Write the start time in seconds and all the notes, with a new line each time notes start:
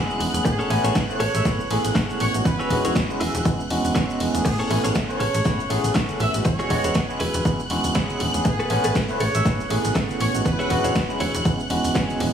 Already playing: G#3 B3 C#4 E4 F#4 G#4 E5 F#6
0.10 shaker
0.20 E1, open hi-hat, ride
0.34 E1 A3 B3 C#4 E4 G#4, closed hi-hat, shaker
0.45 A2 G#4, muted clean electric guitar stroke, kick, closed hi-hat, ride, shaker
0.59 C#4 G#4 A4 C#5, shaker
0.70 A1 A3 B3 C#4 E4 G#5, open hi-hat, ride
0.84 A1 C#4 G#4 A4 C#5, closed hi-hat, shaker
0.95 A2, kick, snare, closed hi-hat, ride, shaker
1.09 A3 B3 C#4 E4 B4 C#5, shaker
1.20 A1 C#4 G#4 A4 C#5, open hi-hat, ride
1.35 A1 E5, closed hi-hat, shaker
1.45 A2 A3 B3 C#4 E4 B4, kick, snare, closed hi-hat, ride, shaker
1.60 A1, shaker
1.70 A1 A3 B3 C#4 E4 G#4, open hi-hat, ride
1.85 A1, closed hi-hat, shaker
1.95 A2 A3 B3 C#4 E4 G#4 A4 C#5, kick, snare, closed hi-hat, ride, shaker
2.10 shaker
2.20 A1 C#5, open hi-hat, ride
2.34 A1 G#3 B3 C#4 E4 F#4, closed hi-hat, shaker
2.45 E2 B4, muted clean electric guitar stroke, kick, closed hi-hat, ride, shaker
2.59 E1 E4 F#4 G#4 C#5, shaker
2.70 E1 G#3 B3 C#4 E4 F#4, kick, open hi-hat, ride
2.85 E1 E4 F#4 G#4 C#5, closed hi-hat, shaker
2.95 E2, kick, snare, closed hi-hat, ride, shaker
3.10 G#3 B3 C#4 E4 B4, shaker
3.20 E1 E4 F#4 G#4 E5, open hi-hat, ride
3.34 E1, closed hi-hat, shaker
3.45 E2 G#3 B3 C#4 E4 B4, kick, closed hi-hat, ride, shaker
3.59 E1, shaker
3.70 E1 G#3 B3 C#4 E4 F#4, open hi-hat, ride
3.85 E1, open hi-hat, shaker
3.95 E2 B3 C#4 E4 F#4 G#4 C#5, kick, snare, closed hi-hat, ride, shaker
4.10 shaker
4.20 E1, open hi-hat, ride
4.34 E1 A3 B3 C#4 E4 G#4, closed hi-hat, shaker
4.45 A2 G#4 F#6, muted clean electric guitar stroke, kick, closed hi-hat, crash, ride, maracas, shaker
4.59 C#4 G#4 A4 C#5, maracas, shaker
4.70 A1 A3 B3 C#4 E4 G#5, open hi-hat, ride
4.84 A1 C#4 G#4 A4 C#5, closed hi-hat, shaker, maracas
4.95 A2, kick, snare, closed hi-hat, ride, maracas, shaker
5.09 A3 B3 C#4 E4 B4 C#5, maracas, shaker
5.20 A1 C#4 G#4 A4 C#5, open hi-hat, ride, high conga
5.34 A1, closed hi-hat, maracas, shaker
5.45 A2 A3 B3 C#4 E4 B4, kick, snare, closed hi-hat, ride, maracas, shaker
5.60 A1, maracas, shaker
5.69 A1 A3 B3 C#4 E4 G#4, open hi-hat, ride
5.84 A1, closed hi-hat, high conga, maracas, shaker
5.94 A2 A3 C#4 E4 G#4 A4 C#5, kick, snare, closed hi-hat, ride, maracas, shaker
6.08 high conga, maracas, shaker
6.20 A1 E5, open hi-hat, ride, low conga
6.34 A1 G#3 B3 C#4 E4 F#4, closed hi-hat, maracas, shaker
6.45 E2 C#5, muted clean electric guitar stroke, kick, closed hi-hat, ride, maracas, shaker
6.59 E1 E4 F#4 G#4 C#5, maracas, shaker
6.70 E1 G#3 B3 C#4 E4 F#4, kick, open hi-hat, ride
6.84 E1 E4 F#4 G#4 C#5, closed hi-hat, maracas, shaker
6.94 E2, kick, snare, closed hi-hat, ride, maracas, shaker
7.09 G#3 B3 C#4 E4 B4, shaker, maracas
7.20 E1 E4 F#4 G#4 B4, open hi-hat, ride, high conga
7.34 E1, closed hi-hat, maracas, shaker
7.45 E2 G#3 B3 C#4 E4 B4, kick, closed hi-hat, ride, shaker, maracas
7.60 E1, shaker, maracas
7.70 E1 G#3 B3 C#4 E4 F#4, open hi-hat, ride
7.84 E1, open hi-hat, high conga, maracas, shaker
7.94 E2 G#3 B3 C#4 E4 F#4 G#4 C#5, kick, snare, closed hi-hat, ride, shaker, maracas
8.10 high conga, shaker, maracas
8.20 E1, open hi-hat, ride, low conga
8.34 E1 A3 B3 C#4 E4 G#4, closed hi-hat, maracas, shaker
8.45 A2 G#4, muted clean electric guitar stroke, kick, closed hi-hat, ride, maracas, shaker
8.59 C#4 G#4 A4 B4, maracas, shaker
8.70 A1 A3 B3 C#4 E4 G#5, open hi-hat, ride
8.84 A1 C#4 G#4 A4 B4, closed hi-hat, maracas, shaker
8.95 A2, kick, snare, closed hi-hat, ride, maracas, shaker
9.08 A3 B3 C#4 E4 B4 C#5, maracas, shaker
9.19 A1 C#4 G#4 A4 C#5, open hi-hat, ride, high conga
9.35 A1 E5, closed hi-hat, maracas, shaker
9.45 A2 A3 B3 C#4 E4 B4, kick, snare, closed hi-hat, ride, maracas, shaker
9.60 A1, maracas, shaker
9.69 A1 A3 B3 C#4 E4 G#4, open hi-hat, ride
9.85 A1, closed hi-hat, high conga, maracas, shaker
9.94 A2 A3 B3 C#4 E4 G#4 A4 C#5, kick, snare, closed hi-hat, ride, maracas, shaker
10.09 high conga, maracas, shaker
10.20 A1 C#5, open hi-hat, ride, low conga
10.34 A1 G#3 B3 C#4 E4 F#4, closed hi-hat, shaker, maracas
10.45 E2 B4, muted clean electric guitar stroke, kick, closed hi-hat, ride, shaker, maracas
10.59 E1 E4 F#4 G#4 C#5, shaker, maracas
10.69 E1 G#3 B3 C#4 E4 F#4, kick, open hi-hat, ride
10.84 E1 E4 F#4 G#4 C#5, closed hi-hat, low conga, maracas, shaker
10.95 E2, kick, snare, closed hi-hat, ride, shaker, maracas
11.09 G#3 B3 C#4 E4 B4, maracas, shaker
11.20 E1 E4 F#4 G#4 C#5, open hi-hat, ride, high conga
11.35 E1, closed hi-hat, shaker, maracas
11.45 E2 G#3 B3 C#4 E4 B4, kick, closed hi-hat, ride, maracas, shaker
11.59 maracas, shaker
11.70 E1 G#3 B3 C#4 E4 F#4, open hi-hat, ride
11.84 E1, open hi-hat, high conga, maracas, shaker
11.95 E2 G#3 B3 C#4 E4 F#4 G#4 C#5, kick, snare, closed hi-hat, ride, maracas, shaker
12.09 high conga, maracas, shaker
12.20 E1, open hi-hat, ride, low conga